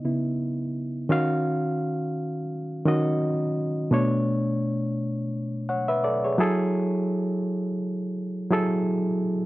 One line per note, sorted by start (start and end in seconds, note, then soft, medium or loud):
0.00 0.05 C#3 medium
0.00 0.05 B3 medium
0.00 0.36 D#4 medium
0.00 0.05 E4 medium
0.00 0.35 D#5 loud
0.05 0.36 C#3 soft
0.05 0.36 B3 soft
0.05 0.36 E4 soft
1.09 2.39 D#3 medium
1.09 2.40 C#4 medium
1.09 2.40 F#4 medium
1.09 2.41 F5 loud
2.85 3.83 D#3 medium
2.85 3.83 C#4 medium
2.85 3.84 F#4 medium
2.85 3.84 D#5 medium
3.91 5.21 B2 medium
3.91 5.22 A3 medium
3.91 5.22 D4 medium
3.91 5.23 C#5 loud
5.69 5.88 C#5 soft
5.69 5.87 F#5 medium
5.88 6.03 B4 medium
5.88 6.03 E5 medium
6.04 6.23 A4 medium
6.04 6.22 D5 medium
6.24 6.39 G#4 medium
6.24 6.57 C#5 medium
6.38 7.68 F#3 medium
6.38 7.69 E4 medium
6.38 7.69 G#4 medium
6.38 7.70 A4 loud
8.50 9.46 F#3 medium
8.50 9.46 E4 medium
8.50 9.46 G#4 medium
8.50 9.46 A4 loud